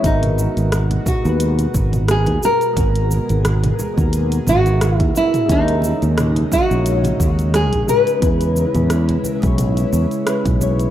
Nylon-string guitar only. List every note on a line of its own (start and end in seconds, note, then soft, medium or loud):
0.06 1.10 D#4 medium
1.08 2.10 F#4 medium
2.11 2.44 G#4 medium
2.45 4.49 A#4 loud
4.49 4.97 F#4 loud
4.97 5.12 E4 loud
5.17 5.51 E4 medium
5.51 6.56 D#4 medium
6.53 7.55 F#4 loud
7.55 7.89 G#4 loud
7.89 10.57 B4 loud